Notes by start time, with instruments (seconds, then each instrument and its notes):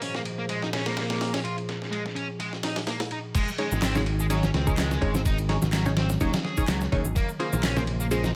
Already playing: ambient pad A#2 F3 G#4 C5
0.02 distorted electric guitar C#4, open hi-hat
0.15 distorted electric guitar A#3, snare
0.25 ride
0.38 distorted electric guitar A#3
0.49 distorted electric guitar G#3, ride
0.62 distorted electric guitar D#4, snare
0.73 distorted electric guitar C#4, snare, open hi-hat
0.86 distorted electric guitar A#3, snare, open hi-hat
0.97 snare, open hi-hat
1.10 snare, open hi-hat
1.21 snare, open hi-hat
1.34 distorted electric guitar C#4, snare, open hi-hat
1.44 distorted electric guitar F4, ride
1.58 ride
1.69 snare, ride
1.82 snare
1.92 distorted electric guitar G#3, ride
2.06 snare
2.16 distorted electric guitar C#4, ride
2.40 distorted electric guitar G#3, ride
2.53 snare
2.63 distorted electric guitar D#4, snare, open hi-hat
2.76 snare, open hi-hat
2.87 distorted electric guitar A#3, snare, open hi-hat
3.00 snare, open hi-hat
3.11 distorted electric guitar D#4, ride
3.35 ambient pad D#3 G#3, distorted electric guitar G#3, kick, crash, ride, shaker
3.48 shaker
3.58 distorted electric guitar G#3, synth stab C#4 D#4 G#4 C#5, ride
3.72 picked electric bass G#1, high conga, shaker
3.82 distorted electric guitar C4, snare, clap, open hi-hat, shaker
3.95 distorted electric guitar G#3, synth stab C#4 D#4 G#4 C#5, snare, low conga, shaker
4.06 ride
4.19 distorted electric guitar G#3, shaker
4.30 distorted electric guitar F#3, synth stab C#4 D#4 G#4 C#5, ride, shaker
4.43 distorted electric guitar C#4, snare, high bongo, high conga, shaker
4.54 picked electric bass C#2, distorted electric guitar C4, snare, ride
4.67 distorted electric guitar G#3, synth stab C#4 D#4 G#4 C#5, kick, shaker
4.77 snare, clap, ride, high conga, shaker
4.91 snare, shaker
5.01 picked electric bass G#1, synth stab C#4 D#4 G#4 C#5, kick, ride
5.14 distorted electric guitar C4, snare, high bongo, high conga, shaker
5.25 ambient pad F#3, distorted electric guitar D#4, kick, ride, shaker
5.38 ride, shaker
5.49 synth stab C#4 D#4 G#4 C#5, snare, ride
5.62 picked electric bass G#1, snare, high conga, low conga, shaker
5.73 distorted electric guitar F#3, snare, clap, ride, shaker
5.86 synth stab C#4 D#4 G#4 C#5, snare, low conga, shaker
5.97 distorted electric guitar C4, snare, ride, high conga
6.09 snare, shaker
6.20 picked electric bass D#2, distorted electric guitar F#3, synth stab C#4 D#4 G#4 C#5, kick, ride, shaker
6.33 snare, ride, high conga, shaker
6.45 distorted electric guitar G#4, snare
6.57 synth stab C#4 D#4 G#4 C#5, muted picked electric bass stroke, kick, ride, high bongo, shaker
6.68 picked electric bass C#2, distorted electric guitar F#3, snare, clap, ride, high conga, shaker
6.81 snare, shaker
6.92 picked electric bass D#2, synth stab C#4 D#4 G#4 C#5, kick, ride, low conga
7.05 picked electric bass G#1, high conga, shaker
7.16 ambient pad C#3 G#3 A#3, distorted electric guitar A#3, kick, ride, shaker
7.29 shaker
7.39 distorted electric guitar A#3, synth stab C#4 F4 G#4 C5, ride
7.53 picked electric bass A#1, high conga, shaker
7.63 distorted electric guitar C#4, snare, clap, open hi-hat, shaker
7.76 distorted electric guitar A#3, synth stab C#4 F4 G#4 C5, snare, low conga, shaker
7.87 ride, high conga
8.00 distorted electric guitar A#3, shaker
8.11 distorted electric guitar G#3, synth stab C#4 F4 G#4 C5, ride, shaker
8.24 distorted electric guitar D#4, snare, high bongo, high conga, shaker